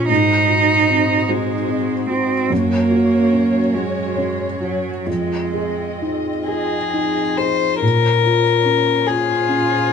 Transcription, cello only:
0.09 1.30 D#4 medium
1.28 2.09 G#3 medium
2.10 2.53 C4 medium
2.52 3.77 A#3 medium
3.75 4.62 G#3 medium
4.62 5.07 F#3 soft
5.06 6.48 G#3 medium
9.06 9.93 F4 medium

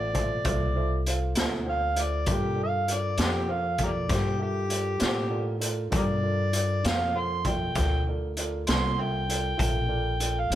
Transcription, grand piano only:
0.13 0.37 F4 medium
0.13 0.37 A4 medium
0.13 0.37 C5 medium
0.13 0.37 E5 medium
0.44 0.68 F4 medium
0.44 0.68 A4 medium
0.44 0.68 C5 medium
0.44 0.68 E5 medium
0.75 0.98 F4 medium
0.75 0.98 A4 medium
0.75 0.99 C5 medium
0.75 0.99 E5 medium
1.07 1.29 F4 medium
1.07 1.30 A4 medium
1.07 1.30 C5 medium
1.07 1.30 F5 medium
1.37 1.60 F4 medium
1.37 1.60 A4 medium
1.37 1.60 C5 medium
1.37 1.60 E5 medium
1.66 1.89 F4 soft
1.66 1.90 A4 soft
1.66 1.90 C5 soft
1.66 1.90 G5 medium
1.96 2.19 F4 soft
1.96 2.20 A4 soft
1.96 2.20 C5 soft
1.96 2.20 E5 medium
2.26 2.50 F4 medium
2.26 2.50 A4 medium
2.26 2.50 A#4 medium
2.26 2.50 D5 medium
2.55 2.80 F4 soft
2.55 2.80 A4 soft
2.55 2.80 A#4 soft
2.55 2.80 D5 medium
2.87 3.11 F4 soft
2.87 3.11 A4 soft
2.87 3.11 A#4 soft
2.87 3.11 D5 medium
3.18 3.41 F4 medium
3.18 3.42 A#4 soft
3.18 3.42 D5 medium
3.47 3.71 F4 medium
3.47 3.72 A4 soft
3.47 3.71 A#4 soft
3.47 3.72 C5 medium
3.79 4.02 F4 medium
3.79 4.02 A4 soft
3.79 4.03 A#4 soft
3.79 4.03 D5 medium
4.08 4.32 F4 medium
4.08 4.33 A4 soft
4.08 4.33 A#4 soft
4.08 4.33 C5 medium
4.38 4.62 F4 soft
4.38 4.63 A4 soft
4.38 4.63 A#4 soft
4.38 4.63 E5 medium
4.69 4.93 F4 soft
4.69 4.93 A4 soft
4.69 4.94 A#4 soft
4.69 4.94 D5 medium
4.99 5.23 F4 medium
4.99 5.23 A4 soft
4.99 5.24 A#4 medium
4.99 5.24 D5 medium
5.29 5.54 F4 medium
5.29 5.54 A4 medium
5.29 5.54 A#4 medium
5.29 5.54 D5 medium
5.60 5.84 F4 medium
5.60 5.85 A4 medium
5.60 5.85 A#4 medium
5.60 5.85 D5 medium
5.90 6.15 F4 medium
5.90 6.15 A4 medium
5.90 6.15 A#4 medium
5.90 6.15 D5 medium
6.23 6.46 F4 soft
6.23 6.47 A4 soft
6.23 6.47 A#4 soft
6.23 6.46 D5 medium
6.53 6.76 F4 soft
6.53 6.77 A4 soft
6.53 6.77 A#4 soft
6.53 6.77 D5 medium
6.83 7.07 F4 medium
6.83 7.07 A4 soft
6.83 7.07 A#4 soft
6.83 7.08 D5 medium
7.14 7.38 F4 soft
7.14 7.38 A4 soft
7.14 7.38 A#4 soft
7.14 7.38 C5 medium
7.44 7.68 F4 medium
7.44 7.68 A4 soft
7.44 7.69 A#4 soft
7.44 7.69 E5 medium
7.76 7.99 F4 medium
7.76 8.00 A4 soft
7.76 7.99 A#4 soft
7.76 8.00 D5 medium
8.07 8.30 F4 soft
8.07 8.30 A4 soft
8.07 8.31 A#4 soft
8.07 8.31 D5 medium
8.37 8.60 F4 medium
8.37 8.60 A4 medium
8.37 8.60 A#4 medium
8.37 8.61 D5 medium
8.67 8.91 F4 medium
8.67 8.90 A4 soft
8.67 8.91 A#4 soft
8.67 8.91 D5 medium
8.98 9.21 F4 medium
8.98 9.21 A4 soft
8.98 9.21 A#4 soft
8.98 9.22 E5 medium
9.29 9.52 F4 medium
9.29 9.52 A4 soft
9.29 9.52 A#4 medium
9.29 9.53 D5 medium
9.57 9.81 F4 medium
9.57 9.81 A4 medium
9.57 9.82 A#4 medium
9.57 9.82 E5 medium
9.88 10.12 F4 medium
9.88 10.12 A4 medium
9.88 10.12 A#4 medium
9.88 10.12 D5 medium
10.20 10.43 F4 soft
10.20 10.43 A4 soft
10.20 10.43 A#4 soft
10.20 10.44 D5 medium
10.51 10.55 F4 medium
10.51 10.55 A4 soft

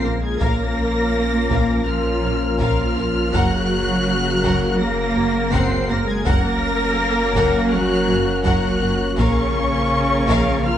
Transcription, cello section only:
0.04 0.23 A#3 medium
0.23 0.41 G#3 medium
0.41 1.84 A#3 medium
1.87 2.59 F3 medium
2.60 3.32 F3 medium
3.34 4.80 F#3 loud
4.80 5.53 A#3 loud
5.53 5.90 C4 medium
5.90 6.09 A#3 medium
6.08 6.26 G#3 medium
6.26 7.70 A#3 loud
7.73 8.45 F#3 loud
8.46 9.18 F#3 medium
9.19 10.63 C#3 loud
10.65 10.78 F3 loud

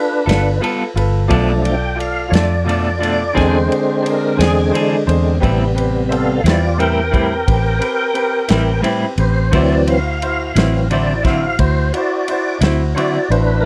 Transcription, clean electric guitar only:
0.26 0.49 B3 medium
0.26 0.48 F4 medium
0.26 0.47 A4 medium
0.62 0.82 G3 medium
0.62 0.83 B3 medium
0.62 0.83 F4 medium
0.62 0.84 A4 medium
1.29 1.50 B2 medium
1.29 1.51 F3 medium
1.29 1.51 A3 medium
1.29 1.51 D4 medium
2.33 2.55 F3 soft
2.33 2.55 A3 medium
2.33 2.54 D4 medium
2.66 2.87 B2 medium
2.66 2.88 F3 medium
2.66 2.88 A3 medium
2.66 2.89 D4 medium
3.00 3.23 B2 medium
3.00 3.22 F3 medium
3.00 3.22 A3 medium
3.00 3.22 D4 medium
3.35 3.56 E3 medium
3.35 3.56 C4 medium
3.35 3.56 D4 loud
3.35 3.57 G#4 medium
4.39 4.61 C4 soft
4.39 4.60 D4 medium
4.39 4.59 G#4 medium
4.74 4.94 E3 medium
4.74 4.94 C4 medium
4.74 4.95 D4 medium
4.74 4.95 G#4 medium
5.42 5.63 A2 medium
5.42 5.63 G3 medium
5.42 5.63 C4 medium
5.42 5.63 E4 medium
6.44 6.67 G3 soft
6.44 6.66 C4 medium
6.44 6.65 E4 medium
6.78 6.99 A2 medium
6.78 6.99 G3 medium
6.78 7.00 C4 medium
6.78 7.00 E4 medium
7.11 7.34 A2 medium
7.11 7.34 G3 medium
7.11 7.33 C4 medium
7.11 7.33 E4 medium
8.48 8.72 G3 medium
8.48 8.71 C4 medium
8.48 8.70 E4 medium
8.81 9.04 A2 medium
8.81 9.04 G3 medium
8.81 9.05 C4 medium
8.81 9.05 E4 medium
9.51 9.73 D3 medium
9.51 9.73 F#3 medium
9.51 9.74 C4 medium
9.51 9.74 E4 medium
10.55 10.78 F#3 medium
10.55 10.77 C4 medium
10.55 10.76 E4 medium
10.90 11.11 D3 medium
10.90 11.12 F#3 medium
10.90 11.12 C4 medium
10.90 11.12 E4 medium
11.23 11.46 D3 medium
11.23 11.45 F#3 medium
11.23 11.45 C4 medium
11.23 11.45 E4 medium
12.61 12.83 F#3 medium
12.61 12.83 C4 medium
12.61 12.82 E4 medium
12.96 13.17 D3 medium
12.96 13.17 F#3 medium
12.96 13.18 C4 medium
12.96 13.18 E4 medium

